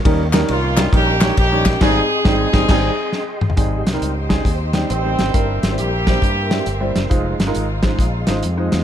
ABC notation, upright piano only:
X:1
M:4/4
L:1/16
Q:"Swing" 1/4=136
K:Ab
V:1 name="Upright piano"
[G,DEB] z [G,DEB]2 z2 [G,DEG] z [G,DEB] z [G,DEd]2 z [G,DEd]2 z | [A,,G,CEA]2 z2 [G,CEG]2 [G,CE]2 [G,CEA]2 z6 | [G,CEA]2 z [G,CEB]2 z [G,CEA]2 z2 [G,CEG]2 z [G,CEG]2 z | [G,C=EB]2 z [G,CEc]2 z [G,CEc]2 z2 [G,CEG]2 z [G,CEc]2 z |
[A,EFc]2 z [A,EFB]2 z [A,EFc]2 z2 [A,EFc]2 z [A,EFc]2 z |]
V:2 name="Upright piano" clef=bass
E,6 z8 z2 | z16 | A,,6 z8 z2 | G,,6 z8 z2 |
z16 |]